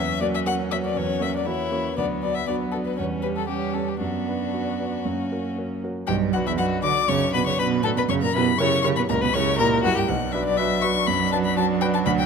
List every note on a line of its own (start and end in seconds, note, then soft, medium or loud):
0.00 0.21 E2 medium
0.00 1.47 F#3 medium
0.00 1.44 C#4 medium
0.00 0.21 E5 medium
0.21 0.44 A#3 medium
0.21 0.44 C#4 soft
0.21 0.44 F#4 medium
0.21 0.26 D5 medium
0.35 0.39 E5 medium
0.46 0.69 A#3 medium
0.46 0.69 C#4 medium
0.46 0.69 F#4 medium
0.46 0.54 F#5 loud
0.71 0.94 A#3 soft
0.71 0.94 C#4 soft
0.71 0.95 F#4 soft
0.71 0.76 E5 medium
0.85 0.98 D5 medium
0.96 1.21 E2 medium
0.96 1.24 C#5 medium
1.20 1.44 A#3 soft
1.20 1.44 C#4 soft
1.20 1.44 F#4 soft
1.20 1.34 E5 medium
1.36 1.48 D5 medium
1.46 1.97 E3 medium
1.46 1.70 A#3 soft
1.46 1.70 C#4 soft
1.46 1.96 E4 medium
1.46 1.70 F#4 soft
1.46 1.97 C#5 medium
1.71 1.94 A#3 soft
1.71 1.95 C#4 medium
1.71 1.95 F#4 soft
1.96 2.22 D2 medium
1.96 2.44 F#3 medium
1.96 2.44 B3 medium
1.96 2.06 D5 medium
2.22 2.45 B3 soft
2.22 2.46 D4 soft
2.22 2.46 F#4 soft
2.22 2.36 D5 medium
2.34 2.47 E5 medium
2.47 3.00 F#3 medium
2.47 2.99 B3 medium
2.47 2.70 B3 soft
2.47 2.71 D4 medium
2.47 2.71 F#4 medium
2.47 2.55 D5 medium
2.72 2.96 B3 soft
2.72 2.96 D4 soft
2.72 2.96 F#4 soft
2.72 2.77 A4 medium
2.85 2.96 B4 soft
2.97 3.23 E2 medium
2.97 3.49 G3 medium
2.97 3.47 C#4 soft
2.97 3.05 C#5 medium
3.22 3.46 C#4 soft
3.22 3.47 G4 soft
3.22 3.28 B4 medium
3.36 3.48 A4 medium
3.48 4.00 G3 medium
3.48 3.99 C#4 medium
3.48 3.72 C#4 soft
3.48 3.75 G4 medium
3.48 3.72 G4 soft
3.74 3.98 C#4 soft
3.74 3.98 G4 soft
3.74 3.90 A4 medium
3.88 4.00 G4 medium
3.99 4.26 F#2 soft
3.99 5.07 B3 medium
3.99 5.06 D4 soft
3.99 5.53 F#4 medium
4.27 4.51 D4 soft
4.27 4.51 F#4 soft
4.27 4.51 B4 soft
4.53 4.77 D4 soft
4.53 4.77 F#4 soft
4.53 4.77 B4 soft
4.79 5.03 D4 soft
4.79 5.03 F#4 soft
4.79 5.03 B4 soft
5.04 5.30 F#2 soft
5.04 5.88 A#3 soft
5.04 5.87 C#4 soft
5.31 5.54 C#4 soft
5.31 5.54 F#4 soft
5.31 5.55 A#4 soft
5.58 5.80 C#4 soft
5.58 5.80 F#4 soft
5.58 5.81 A#4 soft
5.83 6.06 C#4 soft
5.83 6.06 F#4 soft
5.83 6.07 A#4 soft
6.07 6.33 B1 medium
6.07 6.36 G2 medium
6.07 6.16 G4 medium
6.07 6.15 G5 medium
6.33 6.46 F#2 medium
6.33 6.57 D4 medium
6.33 6.48 F#4 medium
6.33 6.57 F#4 medium
6.33 6.57 B4 medium
6.33 6.38 F#5 medium
6.46 6.60 E2 medium
6.46 6.58 E4 medium
6.46 6.52 E5 medium
6.58 6.83 F#2 medium
6.58 6.81 D4 medium
6.58 6.82 F#4 medium
6.58 6.81 F#4 medium
6.58 6.82 B4 medium
6.58 6.66 F#5 medium
6.83 6.91 D3 medium
6.83 7.06 D4 soft
6.83 7.06 F#4 medium
6.83 7.07 B4 soft
6.83 7.10 D5 medium
6.83 7.10 D6 medium
7.08 7.33 F#2 medium
7.08 7.33 C#3 medium
7.08 7.33 C#5 medium
7.08 7.33 C#6 medium
7.33 7.46 B2 medium
7.33 7.56 D4 soft
7.33 7.56 F#4 medium
7.33 7.39 B4 medium
7.33 7.56 B4 medium
7.33 7.46 B5 medium
7.46 7.58 C#3 medium
7.46 7.61 C#5 medium
7.46 7.58 C#6 medium
7.59 7.85 B2 medium
7.59 7.82 D4 soft
7.59 7.82 F#4 soft
7.59 7.84 B4 medium
7.59 7.83 B4 medium
7.59 7.67 B5 medium
7.83 7.95 A2 loud
7.83 8.07 D4 medium
7.83 8.07 F#4 soft
7.83 7.90 A4 loud
7.83 8.07 B4 medium
7.83 7.88 A5 medium
7.95 8.01 B2 medium
7.95 8.03 B4 medium
7.95 8.02 B5 medium
8.08 8.33 F#2 medium
8.08 8.24 C#3 loud
8.08 8.15 C#5 medium
8.08 8.14 C#6 medium
8.22 8.35 A#2 medium
8.22 8.35 A#4 medium
8.22 8.35 A#5 medium
8.33 8.59 B2 medium
8.33 8.57 E4 medium
8.33 8.57 G4 medium
8.33 8.58 A#4 medium
8.33 8.44 B4 medium
8.33 8.60 B5 medium
8.58 8.84 C#3 medium
8.58 8.82 E4 medium
8.58 8.82 G4 medium
8.58 8.82 A#4 medium
8.58 8.84 C#5 medium
8.58 8.82 C#6 loud
8.82 8.97 C#3 medium
8.82 9.07 E4 medium
8.82 9.07 G4 medium
8.82 9.07 A#4 medium
8.82 8.90 C#5 medium
8.82 8.88 C#6 medium
8.96 9.02 B2 medium
8.96 9.03 B4 medium
8.96 9.01 B5 medium
9.09 9.33 C#2 medium
9.09 9.15 A#2 loud
9.09 9.23 A#4 medium
9.09 9.14 A#5 medium
9.21 9.27 B2 loud
9.21 9.36 B4 medium
9.21 9.35 B5 medium
9.33 9.61 C#3 medium
9.33 9.57 E4 soft
9.33 9.57 G4 soft
9.33 9.57 A#4 soft
9.33 9.58 C#5 medium
9.33 9.58 C#6 medium
9.59 9.84 A#2 loud
9.59 9.82 E4 medium
9.59 9.82 G4 medium
9.59 9.83 A#4 loud
9.59 9.82 A#4 soft
9.59 9.67 A#5 medium
9.83 9.89 F#2 medium
9.83 10.06 E4 medium
9.83 9.95 F#4 loud
9.83 10.07 G4 medium
9.83 10.07 A#4 medium
9.83 9.99 F#5 medium
9.96 10.08 G2 medium
9.96 10.01 G4 medium
9.96 10.10 G5 medium
10.08 10.33 B1 medium
10.08 12.26 F#3 medium
10.08 12.26 D4 medium
10.08 10.34 F#5 medium
10.32 10.55 D4 medium
10.32 10.56 F#4 medium
10.32 10.56 B4 medium
10.32 10.44 E5 medium
10.45 10.58 D5 loud
10.57 10.80 D4 medium
10.57 10.81 F#4 medium
10.57 10.81 B4 medium
10.57 10.83 E5 loud
10.82 11.05 D4 medium
10.82 11.06 F#4 medium
10.82 11.06 B4 medium
10.82 11.08 C#6 loud
11.07 11.32 F#2 medium
11.07 11.32 B5 medium
11.32 11.55 D4 medium
11.32 11.55 F#4 medium
11.32 11.55 B4 medium
11.32 11.37 A5 medium
11.45 11.56 B5 medium
11.57 11.79 D4 medium
11.57 11.79 F#4 medium
11.57 11.79 B4 medium
11.57 11.65 A5 loud
11.81 12.04 D4 medium
11.81 12.04 F#4 medium
11.81 12.04 B4 medium
11.81 11.86 G5 medium
11.94 11.99 A5 medium
12.06 12.26 D2 medium
12.06 12.11 B5 medium
12.19 12.26 G5 medium